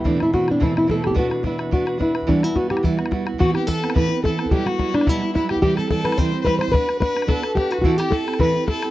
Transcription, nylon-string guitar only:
X:1
M:4/4
L:1/8
Q:"Swing" 1/4=215
K:Ador
V:1 name="Nylon-string guitar"
D E F D E E A G | F2 E2 F2 E2 | D E F G E3 z | F z A2 B2 A2 |
G F2 D E2 E G | G A A B c2 B c | B2 B2 A2 G F | F G A2 B2 A2 |]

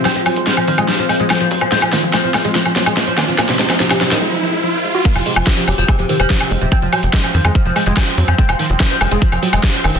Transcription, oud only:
X:1
M:4/4
L:1/16
Q:1/4=144
K:Fm
V:1 name="Oud" clef=bass
C F, F, z F, F, F, A, F, F, F, A, F, F, z F, | C F, F, z F, F, F, A, F, F, F, A, F, F, z F, | B, C, C, z C, C, C, E, z8 | B, C, C, z C, C, C, F, C, C, C, F, C, C, z C, |
C F, F, z F, F, F, A, F, F, F, A, F, F, z F, | C F, F, z F, F, F, A, F, F, F, A, z F, z F, |]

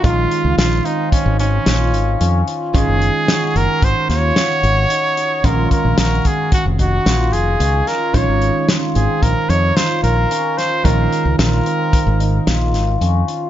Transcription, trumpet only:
X:1
M:5/4
L:1/8
Q:1/4=111
K:Bbm
V:1 name="Trumpet"
F2 F E D D4 z | A3 B c d4- d | B B B A G G2 A2 B | d2 z A B d c B2 c |
B2 B4 z4 |]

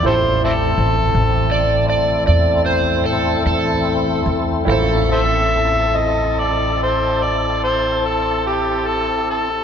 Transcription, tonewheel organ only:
X:1
M:12/8
L:1/8
Q:3/8=48
K:Am
V:1 name="Tonewheel organ"
[F,_B,^C] [A,=CE]8- [A,CE]3 | [F,_B,^C] [=CEA]8- [CEA]3 |]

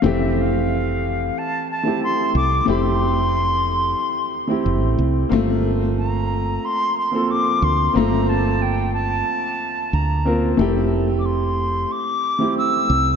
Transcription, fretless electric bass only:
X:1
M:4/4
L:1/16
Q:1/4=91
K:F
V:1 name="Fretless electric bass" clef=bass
F,,,8 z6 C,,2 | F,,,8 z4 F,,, A,,, C,,2 | G,,,8 z6 D,,2 | G,,,8 z4 D,,4 |
F,,,8 z6 C,,2 |]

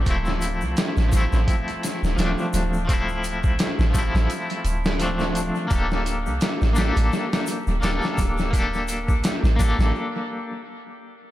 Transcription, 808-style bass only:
X:1
M:4/4
L:1/16
Q:"Swing 16ths" 1/4=85
K:Dm
V:1 name="808-style bass" clef=bass
D,,,3 C,, z A,,,2 A,,, z3 D,,, D,,, z D,,,2- | D,,,3 C,, z A,,,2 A,,, z2 D,,,4- D,,, z | D,,,3 C,, z A,,,2 A,,, z3 D,,, D,,, z D,,,2- | D,,,3 C,, z A,,,2 A,,, z8 |]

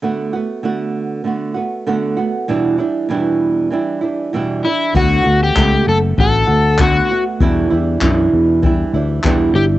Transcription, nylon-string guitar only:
X:1
M:4/4
L:1/8
Q:1/4=98
K:D
V:1 name="Nylon-string guitar"
[D,A,B,F] [A,B,F] [D,A,B,F]2 [D,A,B,F] [A,B,F] [D,A,B,F] [A,B,F] | [E,,B,,E,G,DE] [E,G,DE] [E,,B,,E,G,DE]2 [E,G,DE] [E,G,DE] [E,,B,,E,G,DE] [E,G,DE] | [D,A,B,F] [A,B,F] [A,B,]2 [D,A,B,F] [A,B,F] [D,A,B,F] [A,B,F] | [E,,B,,E,G,DE] [E,G,DE] [E,,B,,E,DE]2 [E,G,DE] [E,G,DE] [E,,B,,E,G,DE] [E,G,DE] |]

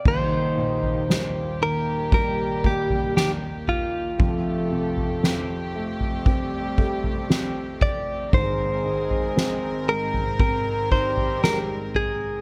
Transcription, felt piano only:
X:1
M:4/4
L:1/8
Q:1/4=58
K:Eb
V:1 name="Felt piano" clef=bass
[E,,,E,,] B,, G, E, G, B, E,2 | [F,,,F,,] C, C =A, C A, C2 | [A,,,A,,] E, C A, C E A,2 |]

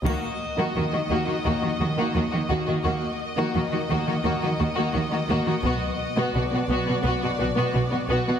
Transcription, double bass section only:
X:1
M:4/4
L:1/16
Q:1/4=86
K:Ebm
V:1 name="Double bass section" clef=bass
E,, z3 E,, z E,, z E,, z E,, z E,, z E,, z | E,, z3 E,, z E,, z E,, z E,, z E,, z E,, z | =B,,, z3 B,,, z B,,, z B,,, z B,,, z B,,, z B,,, z |]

